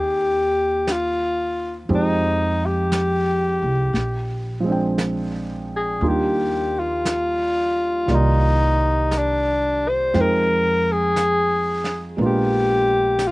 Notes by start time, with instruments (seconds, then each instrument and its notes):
Already playing: upright bass D#2, grand piano D#3 A#3 C4 G5, alto saxophone G4
0.87 brush sweep, snare, hi-hat pedal
0.92 alto saxophone F4
1.89 upright bass F2, grand piano F3 G#3 C4 D#4 G4, brush sweep
1.95 alto saxophone D#4
2.66 alto saxophone G4
2.92 brush sweep, snare, hi-hat pedal
3.63 upright bass C2
3.93 upright bass A#1, brush sweep, snare
4.60 grand piano F3 G#3
4.66 grand piano C4 D4
4.72 grand piano G5
4.98 brush sweep, snare, hi-hat pedal
5.76 alto saxophone G#4
6.01 upright bass D#2, grand piano D#3 G3 A#3 D4 F4, brush sweep
6.08 alto saxophone G4
6.80 alto saxophone F4
7.05 brush sweep, snare, hi-hat pedal
8.06 upright bass C2, grand piano D#3 G3 A#3, brush sweep, snare
8.10 alto saxophone D#4, grand piano F4 D5
9.11 brush sweep, snare, hi-hat pedal
9.18 alto saxophone D4
9.88 alto saxophone C5
10.14 upright bass F2, grand piano F3 G#3 C4 D#4 G5, brush sweep, snare
10.21 alto saxophone A#4
10.92 alto saxophone G#4
11.16 brush sweep, snare, hi-hat pedal
11.84 snare
12.17 upright bass A#1, grand piano G#3 A#3 B3 D4, brush sweep
12.22 grand piano F4
12.26 alto saxophone G4
13.19 brush sweep, snare, hi-hat pedal
13.27 alto saxophone F4